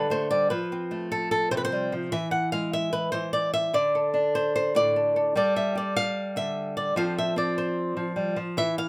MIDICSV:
0, 0, Header, 1, 2, 480
1, 0, Start_track
1, 0, Tempo, 403226
1, 609, Time_signature, 4, 2, 24, 8
1, 10579, End_track
2, 0, Start_track
2, 0, Title_t, "Nylon-string guitar"
2, 0, Program_c, 0, 24
2, 0, Note_on_c, 0, 50, 66
2, 0, Note_on_c, 0, 67, 55
2, 0, Note_on_c, 0, 69, 82
2, 0, Note_on_c, 0, 71, 88
2, 120, Note_on_c, 0, 57, 60
2, 126, Note_off_c, 0, 71, 0
2, 135, Note_on_c, 0, 72, 82
2, 359, Note_off_c, 0, 69, 0
2, 364, Note_on_c, 0, 74, 86
2, 365, Note_off_c, 0, 57, 0
2, 372, Note_on_c, 0, 55, 58
2, 577, Note_off_c, 0, 50, 0
2, 578, Note_off_c, 0, 67, 0
2, 591, Note_off_c, 0, 74, 0
2, 596, Note_on_c, 0, 71, 84
2, 606, Note_on_c, 0, 53, 71
2, 610, Note_off_c, 0, 55, 0
2, 612, Note_off_c, 0, 72, 0
2, 857, Note_on_c, 0, 60, 49
2, 1083, Note_on_c, 0, 57, 60
2, 1322, Note_off_c, 0, 71, 0
2, 1329, Note_on_c, 0, 69, 82
2, 1548, Note_off_c, 0, 69, 0
2, 1562, Note_on_c, 0, 69, 88
2, 1796, Note_off_c, 0, 69, 0
2, 1801, Note_on_c, 0, 72, 92
2, 1809, Note_on_c, 0, 48, 62
2, 1867, Note_off_c, 0, 72, 0
2, 1872, Note_on_c, 0, 71, 76
2, 1955, Note_off_c, 0, 71, 0
2, 1959, Note_on_c, 0, 72, 100
2, 2045, Note_off_c, 0, 57, 0
2, 2051, Note_on_c, 0, 55, 57
2, 2275, Note_off_c, 0, 53, 0
2, 2289, Note_off_c, 0, 55, 0
2, 2289, Note_on_c, 0, 53, 60
2, 2499, Note_off_c, 0, 48, 0
2, 2519, Note_off_c, 0, 72, 0
2, 2524, Note_on_c, 0, 52, 80
2, 2524, Note_on_c, 0, 76, 95
2, 2528, Note_off_c, 0, 53, 0
2, 2531, Note_off_c, 0, 60, 0
2, 2748, Note_off_c, 0, 76, 0
2, 2753, Note_on_c, 0, 78, 87
2, 2997, Note_off_c, 0, 78, 0
2, 3002, Note_on_c, 0, 77, 91
2, 3014, Note_on_c, 0, 56, 60
2, 3244, Note_off_c, 0, 77, 0
2, 3255, Note_on_c, 0, 76, 96
2, 3483, Note_on_c, 0, 71, 89
2, 3708, Note_off_c, 0, 71, 0
2, 3712, Note_on_c, 0, 72, 91
2, 3721, Note_off_c, 0, 52, 0
2, 3736, Note_on_c, 0, 52, 60
2, 3959, Note_off_c, 0, 72, 0
2, 3959, Note_off_c, 0, 76, 0
2, 3964, Note_on_c, 0, 74, 95
2, 4204, Note_off_c, 0, 74, 0
2, 4209, Note_on_c, 0, 76, 97
2, 4420, Note_off_c, 0, 56, 0
2, 4421, Note_off_c, 0, 52, 0
2, 4446, Note_on_c, 0, 50, 72
2, 4447, Note_off_c, 0, 76, 0
2, 4454, Note_on_c, 0, 74, 90
2, 4702, Note_on_c, 0, 69, 45
2, 4925, Note_on_c, 0, 62, 60
2, 5169, Note_off_c, 0, 74, 0
2, 5179, Note_on_c, 0, 72, 94
2, 5409, Note_off_c, 0, 72, 0
2, 5423, Note_on_c, 0, 72, 92
2, 5651, Note_on_c, 0, 45, 64
2, 5654, Note_off_c, 0, 72, 0
2, 5669, Note_on_c, 0, 74, 90
2, 5901, Note_off_c, 0, 69, 0
2, 5906, Note_on_c, 0, 69, 42
2, 6139, Note_off_c, 0, 69, 0
2, 6144, Note_on_c, 0, 69, 47
2, 6335, Note_off_c, 0, 62, 0
2, 6365, Note_off_c, 0, 50, 0
2, 6367, Note_off_c, 0, 45, 0
2, 6371, Note_off_c, 0, 74, 0
2, 6375, Note_on_c, 0, 55, 77
2, 6378, Note_off_c, 0, 69, 0
2, 6383, Note_on_c, 0, 67, 51
2, 6392, Note_on_c, 0, 69, 49
2, 6393, Note_on_c, 0, 74, 89
2, 6615, Note_off_c, 0, 74, 0
2, 6624, Note_on_c, 0, 76, 78
2, 6835, Note_off_c, 0, 67, 0
2, 6849, Note_on_c, 0, 67, 59
2, 6854, Note_off_c, 0, 76, 0
2, 6875, Note_on_c, 0, 74, 77
2, 7096, Note_off_c, 0, 74, 0
2, 7101, Note_on_c, 0, 77, 98
2, 7572, Note_off_c, 0, 77, 0
2, 7572, Note_on_c, 0, 50, 63
2, 7581, Note_on_c, 0, 76, 97
2, 8052, Note_off_c, 0, 76, 0
2, 8057, Note_on_c, 0, 74, 77
2, 8258, Note_off_c, 0, 67, 0
2, 8259, Note_off_c, 0, 50, 0
2, 8268, Note_off_c, 0, 69, 0
2, 8286, Note_on_c, 0, 53, 72
2, 8290, Note_off_c, 0, 55, 0
2, 8291, Note_off_c, 0, 74, 0
2, 8296, Note_on_c, 0, 60, 54
2, 8300, Note_on_c, 0, 77, 94
2, 8302, Note_on_c, 0, 65, 51
2, 8309, Note_on_c, 0, 69, 49
2, 8532, Note_off_c, 0, 77, 0
2, 8552, Note_on_c, 0, 76, 79
2, 8750, Note_off_c, 0, 60, 0
2, 8765, Note_on_c, 0, 60, 64
2, 8778, Note_off_c, 0, 76, 0
2, 8782, Note_on_c, 0, 74, 78
2, 9017, Note_off_c, 0, 69, 0
2, 9021, Note_on_c, 0, 72, 77
2, 9469, Note_off_c, 0, 53, 0
2, 9483, Note_on_c, 0, 53, 66
2, 9494, Note_off_c, 0, 74, 0
2, 9709, Note_off_c, 0, 60, 0
2, 9714, Note_on_c, 0, 55, 58
2, 9942, Note_off_c, 0, 53, 0
2, 9957, Note_on_c, 0, 53, 66
2, 9960, Note_off_c, 0, 55, 0
2, 9974, Note_off_c, 0, 72, 0
2, 10186, Note_off_c, 0, 65, 0
2, 10201, Note_off_c, 0, 53, 0
2, 10203, Note_on_c, 0, 52, 79
2, 10212, Note_on_c, 0, 76, 94
2, 10449, Note_off_c, 0, 76, 0
2, 10453, Note_on_c, 0, 77, 98
2, 10579, Note_off_c, 0, 52, 0
2, 10579, Note_off_c, 0, 77, 0
2, 10579, End_track
0, 0, End_of_file